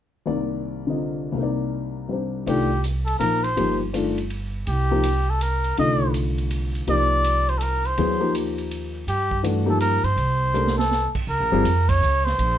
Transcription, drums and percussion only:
0, 0, Header, 1, 2, 480
1, 0, Start_track
1, 0, Tempo, 366972
1, 348, Time_signature, 3, 2, 24, 8
1, 16456, End_track
2, 0, Start_track
2, 0, Title_t, "Drums"
2, 3234, Note_on_c, 9, 51, 49
2, 3365, Note_off_c, 9, 51, 0
2, 3712, Note_on_c, 9, 44, 52
2, 3712, Note_on_c, 9, 51, 47
2, 3843, Note_off_c, 9, 44, 0
2, 3843, Note_off_c, 9, 51, 0
2, 4021, Note_on_c, 9, 51, 40
2, 4152, Note_off_c, 9, 51, 0
2, 4190, Note_on_c, 9, 44, 50
2, 4190, Note_on_c, 9, 51, 54
2, 4321, Note_off_c, 9, 44, 0
2, 4321, Note_off_c, 9, 51, 0
2, 4502, Note_on_c, 9, 51, 35
2, 4632, Note_off_c, 9, 51, 0
2, 4672, Note_on_c, 9, 51, 45
2, 4803, Note_off_c, 9, 51, 0
2, 5152, Note_on_c, 9, 44, 48
2, 5152, Note_on_c, 9, 51, 54
2, 5283, Note_off_c, 9, 44, 0
2, 5283, Note_off_c, 9, 51, 0
2, 5464, Note_on_c, 9, 51, 37
2, 5594, Note_off_c, 9, 51, 0
2, 5627, Note_on_c, 9, 51, 44
2, 5757, Note_off_c, 9, 51, 0
2, 6102, Note_on_c, 9, 51, 46
2, 6233, Note_off_c, 9, 51, 0
2, 6586, Note_on_c, 9, 44, 57
2, 6586, Note_on_c, 9, 51, 62
2, 6716, Note_off_c, 9, 44, 0
2, 6716, Note_off_c, 9, 51, 0
2, 7075, Note_on_c, 9, 44, 48
2, 7075, Note_on_c, 9, 51, 53
2, 7206, Note_off_c, 9, 44, 0
2, 7206, Note_off_c, 9, 51, 0
2, 7379, Note_on_c, 9, 51, 31
2, 7510, Note_off_c, 9, 51, 0
2, 7550, Note_on_c, 9, 51, 44
2, 7681, Note_off_c, 9, 51, 0
2, 8030, Note_on_c, 9, 44, 48
2, 8030, Note_on_c, 9, 51, 53
2, 8161, Note_off_c, 9, 44, 0
2, 8161, Note_off_c, 9, 51, 0
2, 8345, Note_on_c, 9, 51, 37
2, 8476, Note_off_c, 9, 51, 0
2, 8508, Note_on_c, 9, 44, 52
2, 8508, Note_on_c, 9, 51, 58
2, 8639, Note_off_c, 9, 44, 0
2, 8639, Note_off_c, 9, 51, 0
2, 8827, Note_on_c, 9, 51, 30
2, 8958, Note_off_c, 9, 51, 0
2, 8992, Note_on_c, 9, 51, 45
2, 9122, Note_off_c, 9, 51, 0
2, 9474, Note_on_c, 9, 44, 45
2, 9474, Note_on_c, 9, 51, 53
2, 9604, Note_off_c, 9, 44, 0
2, 9604, Note_off_c, 9, 51, 0
2, 9792, Note_on_c, 9, 51, 34
2, 9923, Note_off_c, 9, 51, 0
2, 9949, Note_on_c, 9, 44, 57
2, 9949, Note_on_c, 9, 51, 52
2, 10080, Note_off_c, 9, 44, 0
2, 10080, Note_off_c, 9, 51, 0
2, 10268, Note_on_c, 9, 51, 32
2, 10399, Note_off_c, 9, 51, 0
2, 10432, Note_on_c, 9, 51, 43
2, 10563, Note_off_c, 9, 51, 0
2, 10917, Note_on_c, 9, 44, 47
2, 10917, Note_on_c, 9, 51, 55
2, 11048, Note_off_c, 9, 44, 0
2, 11048, Note_off_c, 9, 51, 0
2, 11223, Note_on_c, 9, 51, 34
2, 11354, Note_off_c, 9, 51, 0
2, 11395, Note_on_c, 9, 51, 49
2, 11526, Note_off_c, 9, 51, 0
2, 11874, Note_on_c, 9, 51, 53
2, 12005, Note_off_c, 9, 51, 0
2, 12183, Note_on_c, 9, 36, 40
2, 12314, Note_off_c, 9, 36, 0
2, 12352, Note_on_c, 9, 44, 43
2, 12352, Note_on_c, 9, 51, 53
2, 12483, Note_off_c, 9, 44, 0
2, 12483, Note_off_c, 9, 51, 0
2, 12824, Note_on_c, 9, 44, 45
2, 12824, Note_on_c, 9, 51, 52
2, 12955, Note_off_c, 9, 44, 0
2, 12955, Note_off_c, 9, 51, 0
2, 13133, Note_on_c, 9, 51, 34
2, 13263, Note_off_c, 9, 51, 0
2, 13308, Note_on_c, 9, 51, 45
2, 13439, Note_off_c, 9, 51, 0
2, 13786, Note_on_c, 9, 44, 46
2, 13789, Note_on_c, 9, 48, 37
2, 13917, Note_off_c, 9, 44, 0
2, 13920, Note_off_c, 9, 48, 0
2, 13955, Note_on_c, 9, 38, 45
2, 14086, Note_off_c, 9, 38, 0
2, 14112, Note_on_c, 9, 38, 67
2, 14243, Note_off_c, 9, 38, 0
2, 14272, Note_on_c, 9, 38, 48
2, 14403, Note_off_c, 9, 38, 0
2, 14585, Note_on_c, 9, 49, 54
2, 14586, Note_on_c, 9, 36, 54
2, 14716, Note_off_c, 9, 36, 0
2, 14716, Note_off_c, 9, 49, 0
2, 15239, Note_on_c, 9, 44, 53
2, 15239, Note_on_c, 9, 51, 57
2, 15370, Note_off_c, 9, 44, 0
2, 15370, Note_off_c, 9, 51, 0
2, 15550, Note_on_c, 9, 51, 69
2, 15551, Note_on_c, 9, 36, 81
2, 15681, Note_off_c, 9, 51, 0
2, 15682, Note_off_c, 9, 36, 0
2, 15726, Note_on_c, 9, 44, 58
2, 15857, Note_off_c, 9, 44, 0
2, 16043, Note_on_c, 9, 38, 34
2, 16174, Note_off_c, 9, 38, 0
2, 16206, Note_on_c, 9, 51, 53
2, 16337, Note_off_c, 9, 51, 0
2, 16456, End_track
0, 0, End_of_file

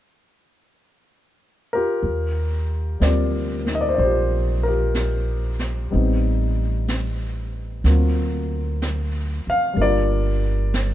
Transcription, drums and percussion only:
0, 0, Header, 1, 2, 480
1, 0, Start_track
1, 0, Key_signature, -3, "major"
1, 0, Tempo, 966184
1, 1011, Time_signature, 4, 2, 24, 8
1, 5436, End_track
2, 0, Start_track
2, 0, Title_t, "Drums"
2, 1010, Note_on_c, 9, 25, 24
2, 1498, Note_off_c, 9, 25, 0
2, 1498, Note_on_c, 9, 25, 29
2, 1498, Note_on_c, 9, 38, 35
2, 1498, Note_on_c, 9, 44, 40
2, 1548, Note_off_c, 9, 38, 0
2, 1548, Note_off_c, 9, 44, 0
2, 1822, Note_on_c, 9, 38, 20
2, 1871, Note_off_c, 9, 38, 0
2, 1981, Note_off_c, 9, 25, 0
2, 1981, Note_on_c, 9, 25, 28
2, 2457, Note_off_c, 9, 25, 0
2, 2457, Note_on_c, 9, 25, 29
2, 2457, Note_on_c, 9, 38, 34
2, 2457, Note_on_c, 9, 44, 42
2, 2507, Note_off_c, 9, 38, 0
2, 2507, Note_off_c, 9, 44, 0
2, 2779, Note_on_c, 9, 38, 21
2, 2828, Note_off_c, 9, 38, 0
2, 2942, Note_off_c, 9, 25, 0
2, 2942, Note_on_c, 9, 25, 32
2, 3420, Note_off_c, 9, 25, 0
2, 3420, Note_on_c, 9, 25, 27
2, 3420, Note_on_c, 9, 38, 35
2, 3420, Note_on_c, 9, 44, 39
2, 3470, Note_off_c, 9, 38, 0
2, 3470, Note_off_c, 9, 44, 0
2, 3897, Note_off_c, 9, 25, 0
2, 3897, Note_on_c, 9, 25, 31
2, 3897, Note_on_c, 9, 38, 23
2, 3947, Note_off_c, 9, 38, 0
2, 4382, Note_off_c, 9, 25, 0
2, 4382, Note_on_c, 9, 25, 29
2, 4382, Note_on_c, 9, 38, 31
2, 4382, Note_on_c, 9, 44, 39
2, 4431, Note_off_c, 9, 38, 0
2, 4431, Note_off_c, 9, 44, 0
2, 4860, Note_off_c, 9, 25, 0
2, 4860, Note_on_c, 9, 25, 25
2, 5335, Note_off_c, 9, 25, 0
2, 5335, Note_on_c, 9, 25, 32
2, 5335, Note_on_c, 9, 38, 36
2, 5335, Note_on_c, 9, 44, 42
2, 5385, Note_off_c, 9, 38, 0
2, 5385, Note_off_c, 9, 44, 0
2, 5436, Note_off_c, 9, 25, 0
2, 5436, End_track
0, 0, End_of_file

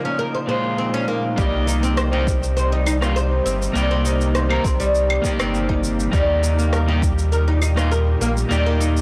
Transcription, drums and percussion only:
0, 0, Header, 1, 2, 480
1, 0, Start_track
1, 0, Tempo, 594059
1, 1114, Time_signature, 4, 2, 24, 8
1, 7284, End_track
2, 0, Start_track
2, 0, Title_t, "Drums"
2, 1115, Note_on_c, 9, 36, 110
2, 1120, Note_on_c, 9, 82, 31
2, 1196, Note_off_c, 9, 36, 0
2, 1201, Note_off_c, 9, 82, 0
2, 1360, Note_on_c, 9, 82, 80
2, 1441, Note_off_c, 9, 82, 0
2, 1486, Note_on_c, 9, 82, 41
2, 1567, Note_off_c, 9, 82, 0
2, 1596, Note_on_c, 9, 37, 79
2, 1599, Note_on_c, 9, 82, 33
2, 1677, Note_off_c, 9, 37, 0
2, 1680, Note_off_c, 9, 82, 0
2, 1835, Note_on_c, 9, 36, 102
2, 1840, Note_on_c, 9, 82, 68
2, 1915, Note_off_c, 9, 36, 0
2, 1921, Note_off_c, 9, 82, 0
2, 1966, Note_on_c, 9, 82, 46
2, 2047, Note_off_c, 9, 82, 0
2, 2080, Note_on_c, 9, 82, 35
2, 2161, Note_off_c, 9, 82, 0
2, 2316, Note_on_c, 9, 75, 64
2, 2320, Note_on_c, 9, 82, 74
2, 2397, Note_off_c, 9, 75, 0
2, 2400, Note_off_c, 9, 82, 0
2, 2443, Note_on_c, 9, 37, 78
2, 2447, Note_on_c, 9, 82, 42
2, 2524, Note_off_c, 9, 37, 0
2, 2527, Note_off_c, 9, 82, 0
2, 2562, Note_on_c, 9, 82, 33
2, 2643, Note_off_c, 9, 82, 0
2, 2801, Note_on_c, 9, 82, 76
2, 2881, Note_off_c, 9, 82, 0
2, 2926, Note_on_c, 9, 82, 45
2, 3007, Note_off_c, 9, 82, 0
2, 3039, Note_on_c, 9, 82, 35
2, 3120, Note_off_c, 9, 82, 0
2, 3276, Note_on_c, 9, 82, 80
2, 3357, Note_off_c, 9, 82, 0
2, 3402, Note_on_c, 9, 82, 44
2, 3483, Note_off_c, 9, 82, 0
2, 3515, Note_on_c, 9, 37, 78
2, 3518, Note_on_c, 9, 82, 33
2, 3595, Note_off_c, 9, 37, 0
2, 3599, Note_off_c, 9, 82, 0
2, 3640, Note_on_c, 9, 75, 64
2, 3721, Note_off_c, 9, 75, 0
2, 3754, Note_on_c, 9, 36, 109
2, 3758, Note_on_c, 9, 82, 72
2, 3835, Note_off_c, 9, 36, 0
2, 3839, Note_off_c, 9, 82, 0
2, 3884, Note_on_c, 9, 82, 49
2, 3965, Note_off_c, 9, 82, 0
2, 3999, Note_on_c, 9, 82, 33
2, 4079, Note_off_c, 9, 82, 0
2, 4121, Note_on_c, 9, 75, 84
2, 4202, Note_off_c, 9, 75, 0
2, 4234, Note_on_c, 9, 36, 60
2, 4239, Note_on_c, 9, 82, 81
2, 4314, Note_off_c, 9, 36, 0
2, 4320, Note_off_c, 9, 82, 0
2, 4361, Note_on_c, 9, 37, 79
2, 4361, Note_on_c, 9, 75, 58
2, 4365, Note_on_c, 9, 82, 43
2, 4442, Note_off_c, 9, 37, 0
2, 4442, Note_off_c, 9, 75, 0
2, 4445, Note_off_c, 9, 82, 0
2, 4479, Note_on_c, 9, 82, 33
2, 4560, Note_off_c, 9, 82, 0
2, 4600, Note_on_c, 9, 36, 64
2, 4681, Note_off_c, 9, 36, 0
2, 4718, Note_on_c, 9, 82, 73
2, 4799, Note_off_c, 9, 82, 0
2, 4846, Note_on_c, 9, 82, 51
2, 4927, Note_off_c, 9, 82, 0
2, 4954, Note_on_c, 9, 36, 116
2, 4960, Note_on_c, 9, 82, 34
2, 5034, Note_off_c, 9, 36, 0
2, 5041, Note_off_c, 9, 82, 0
2, 5201, Note_on_c, 9, 82, 84
2, 5282, Note_off_c, 9, 82, 0
2, 5326, Note_on_c, 9, 82, 43
2, 5406, Note_off_c, 9, 82, 0
2, 5436, Note_on_c, 9, 37, 81
2, 5440, Note_on_c, 9, 82, 34
2, 5517, Note_off_c, 9, 37, 0
2, 5520, Note_off_c, 9, 82, 0
2, 5674, Note_on_c, 9, 36, 115
2, 5680, Note_on_c, 9, 82, 79
2, 5755, Note_off_c, 9, 36, 0
2, 5761, Note_off_c, 9, 82, 0
2, 5806, Note_on_c, 9, 82, 48
2, 5886, Note_off_c, 9, 82, 0
2, 5919, Note_on_c, 9, 82, 35
2, 6000, Note_off_c, 9, 82, 0
2, 6155, Note_on_c, 9, 75, 56
2, 6158, Note_on_c, 9, 82, 80
2, 6236, Note_off_c, 9, 75, 0
2, 6239, Note_off_c, 9, 82, 0
2, 6281, Note_on_c, 9, 37, 79
2, 6285, Note_on_c, 9, 82, 48
2, 6362, Note_off_c, 9, 37, 0
2, 6366, Note_off_c, 9, 82, 0
2, 6400, Note_on_c, 9, 82, 34
2, 6480, Note_off_c, 9, 82, 0
2, 6640, Note_on_c, 9, 82, 77
2, 6721, Note_off_c, 9, 82, 0
2, 6766, Note_on_c, 9, 82, 49
2, 6846, Note_off_c, 9, 82, 0
2, 6883, Note_on_c, 9, 82, 34
2, 6963, Note_off_c, 9, 82, 0
2, 7122, Note_on_c, 9, 82, 82
2, 7202, Note_off_c, 9, 82, 0
2, 7247, Note_on_c, 9, 82, 42
2, 7284, Note_off_c, 9, 82, 0
2, 7284, End_track
0, 0, End_of_file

